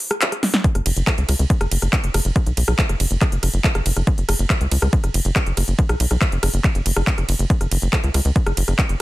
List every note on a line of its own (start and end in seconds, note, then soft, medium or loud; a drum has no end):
0.00 open hi-hat loud
0.11 cross-stick medium
0.11 closed hi-hat medium
0.21 clap loud
0.21 closed hi-hat medium
0.32 cross-stick soft
0.32 closed hi-hat medium
0.43 snare medium
0.43 open hi-hat loud
0.54 snare medium
0.54 closed hi-hat medium
0.64 kick loud
0.64 closed hi-hat medium
0.75 0.81 F#1 medium
0.75 cross-stick soft
0.75 closed hi-hat medium
0.86 0.92 F#1 loud
0.86 open hi-hat loud
0.86 ride medium
0.96 1.03 F#1 medium
0.96 closed hi-hat medium
1.07 kick loud
1.07 cross-stick medium
1.07 clap loud
1.07 closed hi-hat medium
1.18 1.24 C#2 medium
1.18 closed hi-hat medium
1.29 1.35 C#2 loud
1.29 cross-stick soft
1.29 open hi-hat loud
1.29 ride medium
1.39 1.45 C#2 medium
1.39 closed hi-hat medium
1.50 kick loud
1.50 closed hi-hat medium
1.61 1.67 F#1 medium
1.61 cross-stick medium
1.61 closed hi-hat medium
1.71 1.78 F#1 loud
1.71 open hi-hat loud
1.71 ride medium
1.82 1.88 F#1 medium
1.82 cross-stick soft
1.82 closed hi-hat medium
1.93 kick loud
1.93 clap loud
1.93 closed hi-hat medium
2.04 2.10 F#1 medium
2.04 closed hi-hat medium
2.14 2.20 F#1 loud
2.14 cross-stick medium
2.14 open hi-hat loud
2.14 ride medium
2.25 2.31 F#1 medium
2.25 closed hi-hat medium
2.36 kick loud
2.36 cross-stick soft
2.36 closed hi-hat medium
2.46 2.53 B1 medium
2.46 closed hi-hat medium
2.57 2.63 B1 loud
2.57 open hi-hat loud
2.57 ride medium
2.68 2.74 B1 medium
2.68 cross-stick medium
2.68 closed hi-hat medium
2.79 kick loud
2.79 clap loud
2.79 closed hi-hat medium
2.89 2.95 F#1 medium
2.89 cross-stick soft
2.89 closed hi-hat medium
3.00 3.06 F#1 loud
3.00 open hi-hat loud
3.00 ride medium
3.11 3.17 F#1 medium
3.11 closed hi-hat medium
3.21 kick loud
3.21 cross-stick medium
3.21 clap medium
3.21 closed hi-hat medium
3.32 3.38 F#1 medium
3.32 closed hi-hat medium
3.43 3.49 F#1 loud
3.43 cross-stick soft
3.43 open hi-hat loud
3.43 ride medium
3.54 3.60 F#1 loud
3.54 closed hi-hat medium
3.64 kick loud
3.64 clap loud
3.64 closed hi-hat medium
3.75 3.81 F#1 medium
3.75 cross-stick medium
3.75 closed hi-hat medium
3.86 3.92 F#1 loud
3.86 open hi-hat loud
3.86 ride medium
3.96 4.03 F#1 medium
3.96 cross-stick soft
3.96 closed hi-hat medium
4.07 kick loud
4.07 closed hi-hat medium
4.18 4.24 F#1 medium
4.18 closed hi-hat medium
4.29 4.35 F#1 loud
4.29 cross-stick medium
4.29 open hi-hat loud
4.29 ride medium
4.39 4.45 F#1 medium
4.39 closed hi-hat medium
4.50 kick loud
4.50 cross-stick soft
4.50 clap loud
4.50 closed hi-hat medium
4.61 4.67 C#2 medium
4.61 closed hi-hat medium
4.71 4.78 C#2 loud
4.71 open hi-hat loud
4.71 ride medium
4.82 4.88 C#2 medium
4.82 cross-stick medium
4.82 closed hi-hat medium
4.93 kick loud
4.93 closed hi-hat medium
5.04 5.10 F#1 medium
5.04 cross-stick soft
5.04 closed hi-hat medium
5.14 5.20 F#1 loud
5.14 open hi-hat loud
5.14 ride medium
5.25 5.31 F#1 loud
5.25 closed hi-hat medium
5.36 kick loud
5.36 cross-stick medium
5.36 clap loud
5.36 closed hi-hat medium
5.46 5.53 F#1 medium
5.46 closed hi-hat medium
5.57 5.63 F#1 loud
5.57 cross-stick soft
5.57 open hi-hat loud
5.57 ride medium
5.68 5.74 F#1 loud
5.68 closed hi-hat medium
5.79 kick loud
5.79 closed hi-hat medium
5.89 5.95 B1 medium
5.89 cross-stick medium
5.89 closed hi-hat medium
6.00 6.06 B1 loud
6.00 open hi-hat loud
6.00 ride medium
6.11 6.17 B1 medium
6.11 cross-stick soft
6.11 closed hi-hat soft
6.21 kick loud
6.21 clap loud
6.21 closed hi-hat medium
6.32 6.38 F#1 medium
6.32 closed hi-hat medium
6.43 6.49 F#1 loud
6.43 cross-stick medium
6.43 open hi-hat loud
6.43 ride medium
6.54 6.60 F#1 medium
6.54 closed hi-hat medium
6.64 kick loud
6.64 cross-stick soft
6.64 clap medium
6.64 closed hi-hat medium
6.75 6.81 F#1 medium
6.75 closed hi-hat medium
6.86 6.92 F#1 loud
6.86 open hi-hat loud
6.86 ride medium
6.96 7.03 F#1 loud
6.96 cross-stick medium
6.96 closed hi-hat medium
7.07 kick loud
7.07 clap loud
7.07 closed hi-hat medium
7.18 7.24 F#1 medium
7.18 cross-stick soft
7.18 closed hi-hat soft
7.29 7.35 F#1 loud
7.29 open hi-hat loud
7.29 ride medium
7.39 7.45 F#1 medium
7.39 closed hi-hat soft
7.50 kick loud
7.50 closed hi-hat medium
7.61 7.67 F#1 medium
7.61 cross-stick soft
7.61 closed hi-hat medium
7.71 7.78 F#1 loud
7.71 open hi-hat loud
7.71 ride medium
7.82 7.88 F#1 medium
7.82 closed hi-hat soft
7.93 kick loud
7.93 cross-stick medium
7.93 clap loud
7.93 closed hi-hat medium
8.04 8.10 C#2 medium
8.04 closed hi-hat medium
8.14 8.20 C#2 loud
8.14 cross-stick soft
8.14 open hi-hat loud
8.14 ride medium
8.25 8.31 C#2 medium
8.25 closed hi-hat medium
8.36 kick loud
8.36 closed hi-hat medium
8.46 8.53 F#1 medium
8.46 cross-stick medium
8.46 closed hi-hat medium
8.57 8.63 F#1 loud
8.57 open hi-hat loud
8.57 ride medium
8.68 8.74 F#1 loud
8.68 cross-stick soft
8.68 closed hi-hat medium
8.79 kick loud
8.79 clap loud
8.79 closed hi-hat medium
8.89 8.95 F#1 medium
8.89 closed hi-hat medium